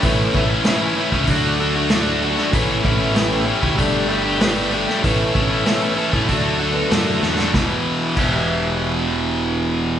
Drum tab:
CC |----------------|----------------|----------------|----x-----------|
HH |o---o---o---o---|o---o---o---o---|o---o---o---o---|----------------|
SD |----o-------o--o|----o-------o--o|----o-------o-oo|o---------------|
BD |o-o----oo-------|o-o----oo-------|o-o----oo-------|o---o-----------|